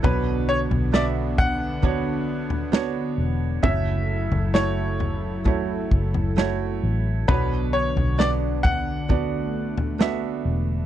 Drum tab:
SD |----o-------o---|----o-------o---|----o-------o---|
FT |o--o--o-o--o----|o--o--o-o--o----|o--o--o-o--o----|
BD |o-----o-o-------|o-------o-o-----|o-----o-o-------|